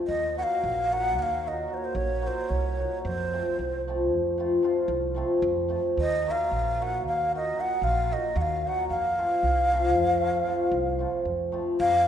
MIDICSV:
0, 0, Header, 1, 4, 480
1, 0, Start_track
1, 0, Tempo, 536673
1, 76, Time_signature, 11, 3, 24, 8
1, 3916, Tempo, 529568
1, 10895, End_track
2, 0, Start_track
2, 0, Title_t, "Ney"
2, 0, Program_c, 0, 77
2, 69, Note_on_c, 0, 75, 99
2, 323, Note_off_c, 0, 75, 0
2, 342, Note_on_c, 0, 78, 89
2, 386, Note_on_c, 0, 77, 97
2, 395, Note_off_c, 0, 78, 0
2, 828, Note_on_c, 0, 78, 100
2, 842, Note_off_c, 0, 77, 0
2, 1064, Note_off_c, 0, 78, 0
2, 1064, Note_on_c, 0, 78, 79
2, 1095, Note_on_c, 0, 77, 86
2, 1104, Note_off_c, 0, 78, 0
2, 1322, Note_on_c, 0, 75, 78
2, 1336, Note_off_c, 0, 77, 0
2, 1553, Note_on_c, 0, 72, 73
2, 1567, Note_off_c, 0, 75, 0
2, 1585, Note_on_c, 0, 73, 68
2, 1599, Note_off_c, 0, 72, 0
2, 1651, Note_on_c, 0, 72, 79
2, 1664, Note_off_c, 0, 73, 0
2, 1750, Note_on_c, 0, 73, 81
2, 1764, Note_off_c, 0, 72, 0
2, 2033, Note_on_c, 0, 72, 79
2, 2046, Note_off_c, 0, 73, 0
2, 2230, Note_on_c, 0, 73, 72
2, 2244, Note_off_c, 0, 72, 0
2, 2708, Note_off_c, 0, 73, 0
2, 2713, Note_on_c, 0, 72, 101
2, 3436, Note_off_c, 0, 72, 0
2, 5391, Note_on_c, 0, 75, 111
2, 5665, Note_on_c, 0, 77, 90
2, 5679, Note_off_c, 0, 75, 0
2, 6132, Note_on_c, 0, 78, 95
2, 6146, Note_off_c, 0, 77, 0
2, 6350, Note_off_c, 0, 78, 0
2, 6358, Note_on_c, 0, 77, 79
2, 6582, Note_off_c, 0, 77, 0
2, 6623, Note_on_c, 0, 75, 87
2, 6841, Note_on_c, 0, 78, 85
2, 6855, Note_off_c, 0, 75, 0
2, 7051, Note_on_c, 0, 77, 88
2, 7065, Note_off_c, 0, 78, 0
2, 7313, Note_on_c, 0, 75, 79
2, 7327, Note_off_c, 0, 77, 0
2, 7534, Note_on_c, 0, 78, 78
2, 7548, Note_off_c, 0, 75, 0
2, 7575, Note_on_c, 0, 77, 85
2, 7584, Note_off_c, 0, 78, 0
2, 7813, Note_on_c, 0, 78, 97
2, 7826, Note_off_c, 0, 77, 0
2, 8003, Note_off_c, 0, 78, 0
2, 8008, Note_on_c, 0, 77, 96
2, 10115, Note_off_c, 0, 77, 0
2, 10646, Note_on_c, 0, 77, 124
2, 10895, Note_off_c, 0, 77, 0
2, 10895, End_track
3, 0, Start_track
3, 0, Title_t, "Hammered dulcimer"
3, 0, Program_c, 1, 15
3, 0, Note_on_c, 1, 53, 61
3, 121, Note_off_c, 1, 53, 0
3, 329, Note_on_c, 1, 54, 51
3, 332, Note_on_c, 1, 58, 57
3, 333, Note_on_c, 1, 63, 52
3, 339, Note_on_c, 1, 66, 76
3, 523, Note_off_c, 1, 58, 0
3, 524, Note_off_c, 1, 63, 0
3, 526, Note_off_c, 1, 66, 0
3, 797, Note_off_c, 1, 54, 0
3, 808, Note_on_c, 1, 54, 52
3, 813, Note_on_c, 1, 58, 55
3, 827, Note_on_c, 1, 63, 56
3, 828, Note_on_c, 1, 66, 73
3, 1010, Note_off_c, 1, 58, 0
3, 1017, Note_off_c, 1, 63, 0
3, 1017, Note_off_c, 1, 66, 0
3, 1281, Note_off_c, 1, 54, 0
3, 1291, Note_on_c, 1, 54, 57
3, 1299, Note_on_c, 1, 58, 51
3, 1307, Note_on_c, 1, 63, 53
3, 1319, Note_on_c, 1, 66, 59
3, 1482, Note_off_c, 1, 58, 0
3, 1486, Note_off_c, 1, 63, 0
3, 1490, Note_off_c, 1, 54, 0
3, 1492, Note_off_c, 1, 66, 0
3, 1501, Note_on_c, 1, 54, 50
3, 1503, Note_on_c, 1, 58, 50
3, 1512, Note_on_c, 1, 63, 50
3, 1520, Note_on_c, 1, 66, 67
3, 1692, Note_off_c, 1, 58, 0
3, 1697, Note_off_c, 1, 63, 0
3, 1701, Note_off_c, 1, 66, 0
3, 1971, Note_off_c, 1, 54, 0
3, 1980, Note_on_c, 1, 54, 52
3, 1983, Note_on_c, 1, 58, 62
3, 1987, Note_on_c, 1, 63, 56
3, 1989, Note_on_c, 1, 66, 79
3, 2179, Note_off_c, 1, 58, 0
3, 2180, Note_off_c, 1, 63, 0
3, 2182, Note_off_c, 1, 66, 0
3, 2465, Note_off_c, 1, 54, 0
3, 2476, Note_on_c, 1, 54, 64
3, 2488, Note_on_c, 1, 63, 58
3, 2492, Note_on_c, 1, 58, 54
3, 2502, Note_on_c, 1, 66, 61
3, 2676, Note_off_c, 1, 63, 0
3, 2678, Note_off_c, 1, 58, 0
3, 2683, Note_off_c, 1, 66, 0
3, 2766, Note_off_c, 1, 54, 0
3, 2978, Note_on_c, 1, 53, 53
3, 2978, Note_on_c, 1, 57, 55
3, 2982, Note_on_c, 1, 60, 57
3, 2983, Note_on_c, 1, 65, 74
3, 3165, Note_off_c, 1, 57, 0
3, 3167, Note_off_c, 1, 60, 0
3, 3168, Note_off_c, 1, 65, 0
3, 3456, Note_off_c, 1, 53, 0
3, 3467, Note_on_c, 1, 53, 73
3, 3473, Note_on_c, 1, 57, 65
3, 3481, Note_on_c, 1, 60, 65
3, 3487, Note_on_c, 1, 65, 74
3, 3656, Note_off_c, 1, 57, 0
3, 3660, Note_off_c, 1, 60, 0
3, 3663, Note_off_c, 1, 65, 0
3, 3904, Note_off_c, 1, 53, 0
3, 3915, Note_on_c, 1, 53, 69
3, 3928, Note_on_c, 1, 57, 63
3, 3929, Note_on_c, 1, 60, 57
3, 3936, Note_on_c, 1, 65, 83
3, 4114, Note_off_c, 1, 57, 0
3, 4115, Note_off_c, 1, 60, 0
3, 4118, Note_off_c, 1, 65, 0
3, 4128, Note_off_c, 1, 53, 0
3, 4139, Note_on_c, 1, 53, 68
3, 4142, Note_on_c, 1, 57, 51
3, 4148, Note_on_c, 1, 60, 63
3, 4157, Note_on_c, 1, 65, 90
3, 4330, Note_off_c, 1, 57, 0
3, 4333, Note_off_c, 1, 60, 0
3, 4337, Note_off_c, 1, 65, 0
3, 4599, Note_off_c, 1, 53, 0
3, 4610, Note_on_c, 1, 53, 71
3, 4624, Note_on_c, 1, 57, 74
3, 4629, Note_on_c, 1, 60, 79
3, 4639, Note_on_c, 1, 65, 81
3, 4819, Note_off_c, 1, 57, 0
3, 4822, Note_off_c, 1, 60, 0
3, 4827, Note_off_c, 1, 65, 0
3, 5089, Note_off_c, 1, 53, 0
3, 5100, Note_on_c, 1, 53, 65
3, 5110, Note_on_c, 1, 57, 68
3, 5110, Note_on_c, 1, 60, 63
3, 5122, Note_on_c, 1, 65, 71
3, 5308, Note_off_c, 1, 57, 0
3, 5308, Note_off_c, 1, 60, 0
3, 5314, Note_off_c, 1, 65, 0
3, 5407, Note_off_c, 1, 53, 0
3, 5624, Note_on_c, 1, 54, 56
3, 5630, Note_on_c, 1, 58, 56
3, 5636, Note_on_c, 1, 66, 78
3, 5642, Note_on_c, 1, 63, 65
3, 5813, Note_off_c, 1, 58, 0
3, 5816, Note_off_c, 1, 66, 0
3, 5819, Note_off_c, 1, 63, 0
3, 6097, Note_off_c, 1, 54, 0
3, 6108, Note_on_c, 1, 54, 61
3, 6117, Note_on_c, 1, 58, 64
3, 6122, Note_on_c, 1, 63, 53
3, 6122, Note_on_c, 1, 66, 78
3, 6303, Note_off_c, 1, 58, 0
3, 6305, Note_off_c, 1, 63, 0
3, 6305, Note_off_c, 1, 66, 0
3, 6593, Note_off_c, 1, 54, 0
3, 6603, Note_on_c, 1, 54, 62
3, 6605, Note_on_c, 1, 63, 48
3, 6610, Note_on_c, 1, 58, 60
3, 6612, Note_on_c, 1, 66, 72
3, 6776, Note_off_c, 1, 63, 0
3, 6779, Note_off_c, 1, 58, 0
3, 6779, Note_off_c, 1, 66, 0
3, 6789, Note_off_c, 1, 54, 0
3, 6800, Note_on_c, 1, 54, 58
3, 6806, Note_on_c, 1, 58, 49
3, 6812, Note_on_c, 1, 63, 50
3, 6819, Note_on_c, 1, 66, 65
3, 6984, Note_off_c, 1, 58, 0
3, 6988, Note_off_c, 1, 63, 0
3, 6991, Note_off_c, 1, 66, 0
3, 7280, Note_off_c, 1, 54, 0
3, 7290, Note_on_c, 1, 54, 60
3, 7297, Note_on_c, 1, 58, 60
3, 7300, Note_on_c, 1, 63, 58
3, 7314, Note_on_c, 1, 66, 76
3, 7478, Note_off_c, 1, 58, 0
3, 7479, Note_off_c, 1, 63, 0
3, 7486, Note_off_c, 1, 66, 0
3, 7792, Note_off_c, 1, 54, 0
3, 7802, Note_on_c, 1, 54, 53
3, 7805, Note_on_c, 1, 58, 45
3, 7810, Note_on_c, 1, 63, 56
3, 7817, Note_on_c, 1, 66, 71
3, 7976, Note_off_c, 1, 58, 0
3, 7979, Note_off_c, 1, 63, 0
3, 7982, Note_off_c, 1, 66, 0
3, 8050, Note_off_c, 1, 54, 0
3, 8260, Note_on_c, 1, 53, 56
3, 8269, Note_on_c, 1, 57, 55
3, 8271, Note_on_c, 1, 60, 59
3, 8277, Note_on_c, 1, 65, 72
3, 8453, Note_off_c, 1, 57, 0
3, 8454, Note_off_c, 1, 60, 0
3, 8457, Note_off_c, 1, 65, 0
3, 8739, Note_off_c, 1, 53, 0
3, 8750, Note_on_c, 1, 53, 69
3, 8757, Note_on_c, 1, 57, 63
3, 8766, Note_on_c, 1, 60, 61
3, 8771, Note_on_c, 1, 65, 66
3, 8942, Note_off_c, 1, 57, 0
3, 8946, Note_off_c, 1, 60, 0
3, 8949, Note_off_c, 1, 65, 0
3, 9191, Note_off_c, 1, 53, 0
3, 9202, Note_on_c, 1, 53, 55
3, 9207, Note_on_c, 1, 57, 62
3, 9212, Note_on_c, 1, 60, 52
3, 9222, Note_on_c, 1, 65, 70
3, 9395, Note_off_c, 1, 57, 0
3, 9398, Note_off_c, 1, 60, 0
3, 9403, Note_off_c, 1, 65, 0
3, 9416, Note_off_c, 1, 53, 0
3, 9426, Note_on_c, 1, 53, 69
3, 9438, Note_on_c, 1, 57, 60
3, 9439, Note_on_c, 1, 60, 56
3, 9448, Note_on_c, 1, 65, 71
3, 9619, Note_off_c, 1, 57, 0
3, 9619, Note_off_c, 1, 60, 0
3, 9624, Note_off_c, 1, 65, 0
3, 9897, Note_off_c, 1, 53, 0
3, 9908, Note_on_c, 1, 53, 58
3, 9909, Note_on_c, 1, 57, 64
3, 9921, Note_on_c, 1, 60, 57
3, 9922, Note_on_c, 1, 65, 66
3, 10100, Note_off_c, 1, 57, 0
3, 10107, Note_off_c, 1, 60, 0
3, 10107, Note_off_c, 1, 65, 0
3, 10378, Note_off_c, 1, 53, 0
3, 10388, Note_on_c, 1, 53, 68
3, 10391, Note_on_c, 1, 57, 66
3, 10397, Note_on_c, 1, 60, 61
3, 10405, Note_on_c, 1, 65, 73
3, 10585, Note_off_c, 1, 57, 0
3, 10588, Note_off_c, 1, 60, 0
3, 10592, Note_off_c, 1, 65, 0
3, 10682, Note_off_c, 1, 53, 0
3, 10895, End_track
4, 0, Start_track
4, 0, Title_t, "Upright bass"
4, 0, Program_c, 2, 32
4, 76, Note_on_c, 2, 39, 84
4, 373, Note_off_c, 2, 39, 0
4, 568, Note_on_c, 2, 34, 85
4, 1066, Note_off_c, 2, 34, 0
4, 1066, Note_on_c, 2, 39, 85
4, 1473, Note_off_c, 2, 39, 0
4, 1742, Note_on_c, 2, 34, 85
4, 2036, Note_off_c, 2, 34, 0
4, 2237, Note_on_c, 2, 36, 71
4, 2529, Note_off_c, 2, 36, 0
4, 2726, Note_on_c, 2, 41, 93
4, 3018, Note_off_c, 2, 41, 0
4, 3210, Note_on_c, 2, 36, 71
4, 3695, Note_off_c, 2, 36, 0
4, 3695, Note_on_c, 2, 41, 92
4, 4103, Note_off_c, 2, 41, 0
4, 4371, Note_on_c, 2, 36, 90
4, 4669, Note_off_c, 2, 36, 0
4, 4863, Note_on_c, 2, 41, 96
4, 5160, Note_off_c, 2, 41, 0
4, 5362, Note_on_c, 2, 39, 79
4, 5657, Note_off_c, 2, 39, 0
4, 5852, Note_on_c, 2, 34, 75
4, 6345, Note_off_c, 2, 34, 0
4, 6345, Note_on_c, 2, 39, 77
4, 6753, Note_off_c, 2, 39, 0
4, 7034, Note_on_c, 2, 34, 88
4, 7325, Note_off_c, 2, 34, 0
4, 7522, Note_on_c, 2, 39, 96
4, 7814, Note_off_c, 2, 39, 0
4, 8017, Note_on_c, 2, 41, 74
4, 8307, Note_off_c, 2, 41, 0
4, 8493, Note_on_c, 2, 36, 79
4, 8980, Note_off_c, 2, 36, 0
4, 8980, Note_on_c, 2, 41, 70
4, 9387, Note_off_c, 2, 41, 0
4, 9660, Note_on_c, 2, 36, 82
4, 9953, Note_off_c, 2, 36, 0
4, 10148, Note_on_c, 2, 41, 72
4, 10441, Note_off_c, 2, 41, 0
4, 10642, Note_on_c, 2, 41, 105
4, 10895, Note_off_c, 2, 41, 0
4, 10895, End_track
0, 0, End_of_file